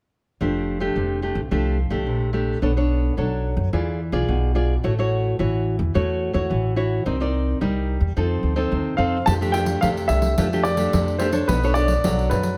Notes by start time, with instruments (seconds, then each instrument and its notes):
0.41 upright bass F1, nylon-string guitar F3 A3 D4 G4
0.80 nylon-string guitar A3 D4 G4
0.96 upright bass F1, nylon-string guitar C3
1.22 nylon-string guitar A3 D4 G4
1.35 upright bass C2
1.51 upright bass C2, nylon-string guitar F3 A3 D4 G4
1.90 upright bass C2, nylon-string guitar A3 D4 G4
2.07 upright bass A#1, nylon-string guitar C3
2.33 nylon-string guitar A3 D4 G4
2.62 upright bass B1, nylon-string guitar B3 D4 A4 C#5
2.77 nylon-string guitar D4 A4 C#5
3.17 upright bass B1, nylon-string guitar F#3 D4 A4 C#5
3.57 upright bass F#2
3.73 upright bass E2, nylon-string guitar E3 F4 G#4 D5
4.12 upright bass B1, nylon-string guitar F4 G#4 D5
4.29 upright bass B1, nylon-string guitar B2
4.55 nylon-string guitar F4 G#4 D5
4.83 upright bass A1, nylon-string guitar A3 E4 F#4 C#5
4.99 nylon-string guitar E4 F#4 C#5
5.39 upright bass A1, nylon-string guitar E3 E4 F#4 C#5
5.79 upright bass E2
5.94 upright bass E2, nylon-string guitar A3 E4 F#4 C#5
6.33 upright bass E2, nylon-string guitar E4 F#4 C#5
6.50 upright bass A1, nylon-string guitar E3
6.76 nylon-string guitar E4 F#4 C#5
7.06 upright bass C2, nylon-string guitar C4 D#4 A#4 D5
7.20 nylon-string guitar D#4 A#4 D5
7.61 upright bass C2, nylon-string guitar G3 D#4 A#4 D5
8.01 upright bass E2
8.16 upright bass F2, nylon-string guitar F3 C4 D#4 A4
8.43 upright bass D2
8.56 nylon-string guitar C4 D#4 A4
8.71 upright bass D#2, nylon-string guitar C3
8.97 upright bass F2, nylon-string guitar C4 D#4 A4, grand piano F5
9.26 upright bass F2, nylon-string guitar F3 A3 D4 G4, grand piano A5, pandeiro
9.41 nylon-string guitar A3 D4 G4, pandeiro
9.52 grand piano G5, pandeiro
9.66 pandeiro
9.81 upright bass F2, nylon-string guitar C3 A3 D4 G4, grand piano F5, pandeiro
9.97 pandeiro
10.08 upright bass C2, grand piano E5, pandeiro
10.22 pandeiro
10.38 upright bass F2, nylon-string guitar F3 A3 D4 G4, pandeiro
10.53 nylon-string guitar A3 D4 G4, pandeiro
10.63 grand piano D5, pandeiro
10.77 nylon-string guitar A3 D4 G4, pandeiro
10.93 upright bass F2, nylon-string guitar C3, pandeiro
11.08 pandeiro
11.18 nylon-string guitar A3 D4 G4, grand piano C5, pandeiro
11.32 nylon-string guitar D4 A4 C#5, pandeiro
11.48 upright bass B1, nylon-string guitar B3, grand piano B4, pandeiro
11.63 nylon-string guitar D4 A4 C#5, pandeiro
11.74 nylon-string guitar D4 A4 C#5, grand piano D5, pandeiro
11.88 pandeiro
12.04 upright bass B1, nylon-string guitar F#3 D4 A4 C#5, pandeiro
12.19 pandeiro
12.30 upright bass F#2, grand piano B4, pandeiro
12.43 pandeiro